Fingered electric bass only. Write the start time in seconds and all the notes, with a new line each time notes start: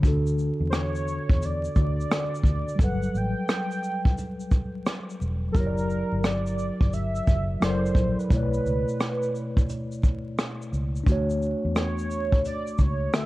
0.04 D2
0.60 E2
1.30 E2
1.76 D2
2.44 D2
2.79 G1
3.15 A1
5.21 E1
5.55 F#1
6.12 G1
6.81 G1
7.28 F#1
7.62 F#1
7.95 A#1
8.31 B1
8.65 C#2
10.73 C#2
11.07 D2
11.65 E2
12.32 D2
12.79 C#2